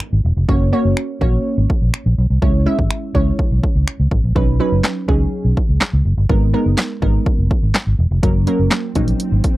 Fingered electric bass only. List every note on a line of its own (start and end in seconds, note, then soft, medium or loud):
0.13 0.20 G#1 medium
0.25 0.32 E1 medium
0.37 0.44 F1 medium
0.49 0.71 F#1 loud
0.85 0.92 F#1 medium
1.21 1.36 A#1 medium
1.58 1.65 G#1 medium
1.82 1.89 A#1 medium
2.06 2.13 A#1 medium
2.18 2.26 B1 medium
2.30 2.38 C2 medium
2.42 2.65 C#2 loud
2.79 2.86 G#1 medium
3.15 3.30 C#2 loud
3.51 3.59 B1 medium
3.75 3.83 C#2 medium
4.00 4.07 C#2 medium
4.11 4.19 A1 medium
4.24 4.31 A#1 medium
4.72 4.80 F#1 medium
5.08 5.23 C#2 medium
5.45 5.52 B1 medium
5.69 5.76 C#2 medium
5.93 6.01 C#2 medium
6.05 6.13 F#1 medium
6.17 6.25 G1 medium
6.30 6.52 G#1 loud
6.66 6.73 F#1 medium
7.02 7.17 G#1 medium
7.38 7.46 F#1 medium
7.63 7.70 G#1 medium
7.87 7.94 G#1 medium
7.99 8.06 E1 medium
8.11 8.18 F1 medium
8.23 8.45 F#1 loud
8.59 8.67 F#1 medium
8.96 9.11 A#1 medium
9.32 9.39 G#1 medium